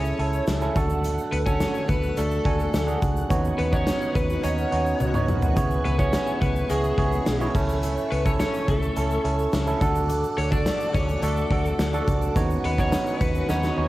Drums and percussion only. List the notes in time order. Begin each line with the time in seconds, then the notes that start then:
0.05 shaker
0.19 closed hi-hat
0.33 shaker
0.47 snare, closed hi-hat, tambourine, shaker
0.61 shaker
0.76 kick, closed hi-hat, shaker
0.90 shaker
1.04 closed hi-hat, shaker
1.18 shaker
1.33 closed hi-hat
1.46 kick, shaker
1.60 snare, closed hi-hat, tambourine, shaker
1.75 shaker
1.89 kick, closed hi-hat, shaker
2.03 shaker
2.17 closed hi-hat, shaker
2.31 shaker
2.45 kick, closed hi-hat
2.60 shaker
2.74 snare, closed hi-hat, tambourine, shaker
2.88 shaker
3.02 kick, closed hi-hat, shaker
3.16 shaker
3.30 kick, closed hi-hat, shaker
3.45 shaker
3.59 closed hi-hat
3.73 kick, shaker
3.87 snare, closed hi-hat, tambourine, shaker
4.01 shaker
4.15 kick, closed hi-hat, shaker
4.30 shaker
4.43 closed hi-hat, shaker
4.58 shaker
4.72 closed hi-hat
4.86 shaker
5.00 high tom, shaker
5.14 mid tom, shaker
5.28 mid tom, shaker
5.42 floor tom, shaker
5.56 kick, closed hi-hat, shaker
5.71 shaker
5.85 closed hi-hat
5.99 kick, shaker
6.13 snare, closed hi-hat, tambourine, shaker
6.27 shaker
6.41 kick, closed hi-hat, shaker
6.56 shaker
6.70 closed hi-hat, shaker
6.84 shaker
6.98 kick, closed hi-hat
7.12 shaker
7.26 snare, closed hi-hat, tambourine, shaker
7.41 shaker
7.55 kick, crash, shaker
7.69 shaker
7.83 closed hi-hat, shaker
7.97 shaker
8.12 closed hi-hat
8.26 kick, shaker
8.40 snare, closed hi-hat, tambourine, shaker
8.54 shaker
8.68 kick, closed hi-hat, shaker
8.82 shaker
8.96 closed hi-hat, shaker
9.11 shaker
9.25 closed hi-hat
9.39 shaker
9.53 snare, closed hi-hat, tambourine, shaker
9.67 shaker
9.81 kick, closed hi-hat, shaker
9.95 shaker
10.09 closed hi-hat, shaker
10.24 shaker
10.38 closed hi-hat
10.52 kick, shaker
10.66 snare, closed hi-hat, tambourine, shaker
10.80 shaker
10.94 kick, closed hi-hat, shaker
11.09 shaker
11.22 closed hi-hat, shaker
11.37 shaker
11.51 kick, closed hi-hat
11.65 shaker
11.79 snare, closed hi-hat, tambourine, shaker
11.94 shaker
12.08 kick, closed hi-hat, shaker
12.22 shaker
12.36 kick, closed hi-hat, shaker
12.50 shaker
12.64 closed hi-hat
12.78 kick, shaker
12.92 snare, closed hi-hat, tambourine, shaker
13.06 shaker
13.21 kick, closed hi-hat, shaker
13.35 shaker
13.49 snare, shaker
13.63 snare, shaker